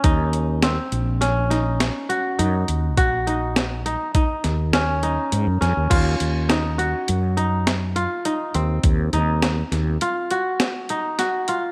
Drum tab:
CC |----------|----------|x---------|----------|
HH |xxxxxxxxxx|xxxxxxxxxx|xxxxxxxxxx|xxxxxxxxxx|
SD |--o-ooo---|--o--oo--o|--o---o---|--oo--o-o-|
BD |o---------|o---o-----|o---------|o---------|